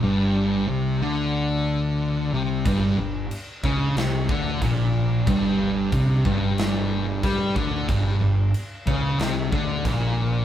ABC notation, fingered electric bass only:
X:1
M:4/4
L:1/8
Q:1/4=92
K:Gm
V:1 name="Fingered electric bass" clef=bass
G,,,2 C,, D,,4 C,, | G,,, G,,, z ^C,, =C,, D,, B,,,2 | G,,,2 C,, G,,,3 G,, D,, | G,,, G,,, z ^C,, =C,, D,, B,,,2 |]